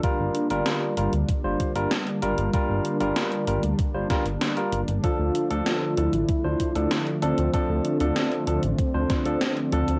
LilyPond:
<<
  \new Staff \with { instrumentName = "Tine electric piano" } { \time 4/4 \key d \minor \tempo 4 = 96 <g f' bes'>8. <g f' bes'>8. <g f' bes'>16 r8 <g f' c''>8 <g f' bes'>16 r8 <g f' bes'>8 | <g f' bes'>8. <g f' bes'>8. <g f' bes'>16 r8 <g f' c''>16 <g f' bes'>16 r8 <g f' bes'>16 r8 | <f d' a'>8. <f d' a'>8. <f d' a'>16 r8 <f d' c''>8 <f d' a'>16 r8 <f d' a'>8 | <f d' a'>8. <f d' a'>8. <f d' a'>16 r8 <f d' c''>8 <f d' a'>16 r8 <f d' a'>8 | }
  \new Staff \with { instrumentName = "Analog synth lead" } { \time 4/4 \key d \minor r1 | r1 | f'4. e'2 c'8~ | c'4 c'2. | }
  \new Staff \with { instrumentName = "Analog synth pad" } { \clef bass \time 4/4 \key d \minor << { <d d'>1~ | <d d'>1~ | <d d'>1~ | <d d'>1 | } \\ { <g bes>1~ | <g bes>1 | <f a>1~ | <f a>1 | } >> }
  \new Staff \with { instrumentName = "Analog synth bass" } { \clef bass \time 4/4 \key d \minor r16 g,,16 r16 g,,16 r8 g,,16 d,16 r16 g,,16 r16 g,,16 r8 g,,16 g,,16 | r16 g,,16 r16 g,,16 r8 g,,16 d,16 r16 g,,16 r16 g,,16 r8 g,,16 g,,16 | r16 d,16 r16 d,16 r8 d,16 a,,16 r16 d,16 r16 d,16 r8 d,16 d,16 | r16 d,16 r16 d,16 r8 d,16 a,,16 r16 d,16 r16 d,16 r8 d,16 d,16 | }
  \new DrumStaff \with { instrumentName = "Drums" } \drummode { \time 4/4 <hh bd>8 hh16 hh16 <hh sn>8 hh16 hh16 <hh bd>8 <hh bd>16 hh16 <hh sn>16 hh16 hh16 hh16 | <hh bd>8 hh16 hh16 <hh sn>16 hh16 hh16 hh16 <hh bd>8 <hh bd sn>16 hh16 <hh sn>16 hh16 hh16 hh16 | <hh bd>8 hh16 hh16 <hh sn>8 hh16 hh16 <hh bd>8 <hh bd>16 hh16 <hh sn>16 hh16 hh16 hh16 | <hh bd>8 hh16 hh16 <hh sn>16 hh16 hh16 hh16 <hh bd>8 <hh bd sn>16 hh16 <hh sn>16 hh16 hh16 hh16 | }
>>